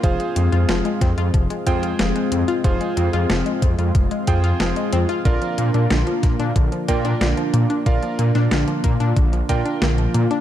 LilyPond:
<<
  \new Staff \with { instrumentName = "Electric grand piano" } { \time 4/4 \key f \dorian \tempo 4 = 92 <f' aes' c'' f''>2~ <f' aes' c'' f''>8 <f' aes' c'' g''>4. | <f' aes' c'' f''>2~ <f' aes' c'' f''>8 <f' aes' c'' g''>4. | <f' bes' d'' f''>2~ <f' bes' d'' f''>8 <f' bes' d'' g''>4. | <f' bes' d'' f''>2~ <f' bes' d'' f''>8 <f' bes' d'' g''>4. | }
  \new Staff \with { instrumentName = "Analog synth pad" } { \time 4/4 \key f \dorian << { f'1~ | f'1~ | f'1~ | f'1 | } \\ { <aes c'>1~ | <aes c'>1 | <bes d'>1~ | <bes d'>1 | } >> }
  \new Staff \with { instrumentName = "Synth arpeggio sound" } { \time 4/4 \key f \dorian f16 aes16 c'16 f'16 f16 aes16 c'16 f'16 f16 aes16 c'16 f'16 f16 aes16 c'16 f'16 | f16 aes16 c'16 f'16 f16 aes16 c'16 f'16 f16 aes16 c'16 f'16 f16 aes16 c'16 f'16 | d16 f16 bes16 d'16 d16 f16 bes16 d'16 d16 f16 bes16 d'16 d16 f16 bes16 d'16 | d16 f16 bes16 d'16 d16 f16 bes16 d'16 d16 f16 bes16 d'16 d16 f16 bes16 d'16 | }
  \new Staff \with { instrumentName = "Detuned saw bass" } { \clef bass \time 4/4 \key f \dorian f,,16 r16 f,16 f,16 f,,16 r16 f,16 f,16 f,,16 r16 f,8 f,,16 r16 f,16 r16 | f,,16 r16 f,16 f,16 f,,16 r16 f,16 f,16 f,,16 r16 f,8 f,,16 r16 f,16 r16 | bes,,16 r16 bes,16 bes,16 bes,,16 r16 bes,16 bes,16 bes,,16 r16 bes,8 bes,,16 r16 bes,16 r16 | bes,,16 r16 bes,16 bes,16 bes,,16 r16 bes,16 bes,16 bes,,8 bes,16 r16 bes,,8 bes,16 r16 | }
  \new DrumStaff \with { instrumentName = "Drums" } \drummode { \time 4/4 <hh bd>16 hh16 hh16 hh16 <hh sn>16 hh16 <hh bd sn>16 hh16 <hh bd>16 hh16 <hh bd>16 hh16 <hh sn>16 hh16 hh16 hh16 | <hh bd>16 hh16 hh16 hh16 <hh sn>16 hh16 <hh bd>16 hh16 <hh bd>16 hh16 <hh bd>16 hh16 <hh sn>16 hh16 hh16 hh16 | <hh bd>16 hh16 hh16 hh16 <hh sn>16 hh16 <hh bd sn>16 hh16 <hh bd>16 hh16 <hh bd>16 hh16 <hh sn>16 hh16 hh16 hh16 | <hh bd>16 hh16 hh16 <hh sn>16 <hh sn>16 hh16 <hh bd>16 hh16 <hh bd>16 hh16 <hh bd>16 hh16 <hh sn>16 hh16 hh16 hh16 | }
>>